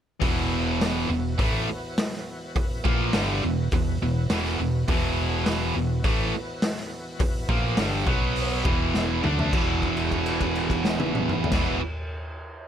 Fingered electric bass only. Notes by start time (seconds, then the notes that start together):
0.22 E1
1.09 E1
1.39 A1
2.55 muted fingered electric bass stroke
2.85 A#1
3.14 G1
3.44 E1
3.72 E1
4.02 E1
4.30 E1
4.59 E1
4.88 E1
5.76 E1
6.05 A1
7.20 muted fingered electric bass stroke
7.49 A#1
7.78 G1
8.07 B1
8.65 E1
9.24 D2
9.53 E1
11.52 E1